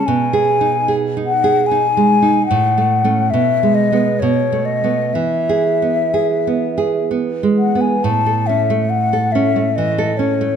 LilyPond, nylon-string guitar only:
\new Staff \with { instrumentName = "Nylon-string guitar" } { \time 3/4 \key a \lydian \tempo 4 = 70 \tuplet 3/2 { b,8 gis'8 dis'8 gis'8 dis'8 gis'8 dis'8 gis8 dis'8 } | \tuplet 3/2 { a,8 a8 <a cis'>8 b,8 gis8 <gis b>8 b,8 a8 <a b>8 } | \tuplet 3/2 { e8 gis'8 b8 gis'8 b8 gis'8 b8 gis8 b8 } | a,16 a'16 cis'16 a8 a'16 cis'16 a16 e16 a'16 cis'16 a16 | }